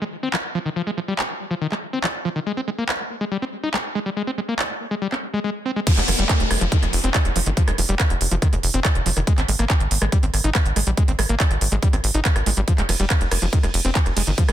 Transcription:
0.02 G#3
0.23 C4
0.34 F3, clap
0.55 F3
0.66 D#3
0.76 F3
0.87 G#3
0.97 F3
1.08 G3
1.19 clap
1.51 F3
1.61 D#3
1.72 G#3, clap
1.93 C4
2.04 F3, clap
2.25 F3
2.36 D#3
2.46 G#3
2.57 C4
2.68 G#3
2.78 A#3
2.89 clap
3.21 G#3
3.32 G3
3.42 C4
3.63 D#4
3.74 G#3, clap
3.95 G#3
4.06 G3
4.17 G#3
4.27 C4
4.38 G#3
4.49 A#3
4.59 clap
4.91 G#3
5.02 G3
5.12 C4, clap
5.34 G#3
5.44 G#3
5.66 C4
5.76 G#3
5.87 F3, kick, closed hi-hat, crash, downlifter
5.97 F1 G#3, clap, closed hi-hat
6.08 F1 F3, cross-stick, open hi-hat
6.19 F1 G3, closed hi-hat
6.29 kick, clap, closed hi-hat
6.40 F1, closed hi-hat
6.51 F1, cross-stick, open hi-hat
6.61 F1 F3, closed hi-hat
6.72 D#3, kick, closed hi-hat
6.83 F1 G#3, cross-stick, closed hi-hat
6.93 F1, open hi-hat
7.04 F1 C4, closed hi-hat
7.14 F3, kick, clap, closed hi-hat
7.25 F1, cross-stick, closed hi-hat
7.36 F1 F3, open hi-hat
7.46 G1 D#3, closed hi-hat
7.57 F3, kick, closed hi-hat
7.68 F1 G#3, cross-stick, closed hi-hat
7.78 F1 F3, open hi-hat
7.89 F1 G3, closed hi-hat
8.00 kick, cross-stick, clap, closed hi-hat
8.10 F1, closed hi-hat
8.21 F1, open hi-hat
8.31 F1 F3, closed hi-hat
8.42 D#3, kick, cross-stick, closed hi-hat
8.53 F1 G#3, closed hi-hat
8.63 F1, open hi-hat
8.74 F1 C4, closed hi-hat
8.85 F3, kick, cross-stick, clap, closed hi-hat
8.95 F1, closed hi-hat
9.06 F1 F3, open hi-hat
9.17 F1 D#3, cross-stick, closed hi-hat
9.27 G#3, kick, closed hi-hat
9.38 G#1 C4, clap, closed hi-hat
9.48 G#1 G#3, open hi-hat
9.59 G#1 A#3, cross-stick, closed hi-hat
9.70 kick, clap, closed hi-hat
9.80 G#1, closed hi-hat
9.91 G#1, open hi-hat
10.02 G#1 G#3, cross-stick, closed hi-hat
10.12 G3, kick, closed hi-hat
10.23 G#1 C4, closed hi-hat
10.34 G#1, cross-stick, open hi-hat
10.44 G#1 D#4, closed hi-hat
10.55 G#3, kick, clap, closed hi-hat
10.66 G#1, closed hi-hat
10.76 G#1 G#3, cross-stick, open hi-hat
10.87 A#1 G3, closed hi-hat
10.97 G#3, kick, closed hi-hat
11.08 G#1 C4, closed hi-hat
11.19 G#1 G#3, cross-stick, open hi-hat
11.29 G#1 A#3, closed hi-hat
11.40 kick, clap, closed hi-hat
11.51 G#1, cross-stick, closed hi-hat
11.61 G#1, open hi-hat
11.72 G#1 G#3, closed hi-hat
11.83 G3, kick, closed hi-hat
11.93 G#1 C4, cross-stick, closed hi-hat
12.04 G#1, open hi-hat
12.14 G#1 D#4, closed hi-hat
12.25 G#3, kick, clap, closed hi-hat
12.36 G#1, cross-stick, closed hi-hat
12.46 G#1 G#3, open hi-hat
12.57 G#1 G3, closed hi-hat
12.68 F3, kick, closed hi-hat
12.78 F1 G#3, clap, closed hi-hat
12.89 F1 F3, cross-stick, open hi-hat, ride
13.00 F1 G3, closed hi-hat
13.10 kick, clap, closed hi-hat
13.21 F1, closed hi-hat
13.31 F1, cross-stick, open hi-hat, ride
13.42 F1 F3, closed hi-hat
13.53 D#3, kick, closed hi-hat
13.63 F1 G#3, cross-stick, closed hi-hat
13.74 F1, open hi-hat, ride
13.85 F1 C4, closed hi-hat
13.95 F3, kick, clap, closed hi-hat
14.06 F1, cross-stick, closed hi-hat
14.17 F1 G#3, open hi-hat, ride
14.27 G1 D#3, closed hi-hat
14.38 F3, kick, closed hi-hat
14.49 F1 G#3, cross-stick, closed hi-hat

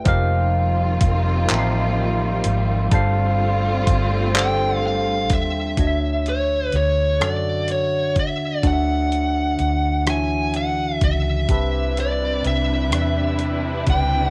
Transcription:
0.04 F1 D#3 F3 G3 A#3 C4 D#4 F4 G4 A#4 F5, kick, closed hi-hat
1.01 F1, kick, closed hi-hat
1.48 A1 F3 D#4 G4 A#4 E5, clap, closed hi-hat
1.58 F5
2.44 G#1, closed hi-hat
2.91 G1 D3 G3 A3 C4 D4 F4 A4 C5, kick, closed hi-hat
2.95 F5
3.87 G1, kick, closed hi-hat
4.34 G3 D4 A4 C5 G5, clap, closed hi-hat
4.38 G5
4.87 F5
5.30 D#2 E5, kick, closed hi-hat
5.77 D2 D3 D4 F#4 C#5 D#5, kick, closed hi-hat
5.87 E5
6.26 C#5, closed hi-hat
6.72 D2, closed hi-hat
6.77 C#5
7.20 F#2 D3 D4 F#4 D5 E5, cross-stick, closed hi-hat
7.30 F#5
7.68 C#5, closed hi-hat
8.16 D#2 E5, kick, closed hi-hat
8.63 D2 D3 D4 F#4 C#5 D5, kick, closed hi-hat
8.67 F#5
8.73 E5
9.12 closed hi-hat
9.59 D2, closed hi-hat
10.05 E3 D4 F#4 C#5 E5, cross-stick, closed hi-hat
10.10 G#5
10.54 F#5, closed hi-hat
11.01 C#2 E5, kick, closed hi-hat
11.48 C2 C3 G3 C4 D4 E4 B4, kick, closed hi-hat
11.52 E5
11.97 D5, closed hi-hat
12.44 C2 E5, closed hi-hat
12.91 E2 C3 C4 D4 B4 D5, cross-stick, closed hi-hat
13.01 E5
13.39 closed hi-hat
13.87 C#2 G5, kick, closed hi-hat
14.25 F#5

